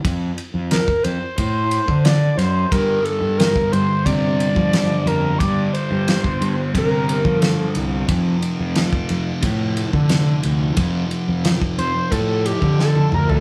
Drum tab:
RD |x-x-x-x-x-x-x-x-|x-x-x-x-x-x-x-x-|x-x-x-x-x-x-x-x-|x-x-x-x-x-x-x-x-|
SD |----o-------o-o-|----o-------o---|----o-------o---|----o-------o---|
T1 |----------------|----------------|----------------|----------------|
T2 |----------------|----------------|----------------|----------------|
FT |----------------|----------------|----------------|----------------|
BD |o----o--o--o----|o----o--o--o----|o----o--o--o----|o----o--o--o----|

RD |x-x-x-x-x-x-----|
SD |----o-------o---|
T1 |-------------o--|
T2 |--------------o-|
FT |---------------o|
BD |o----o--o--o----|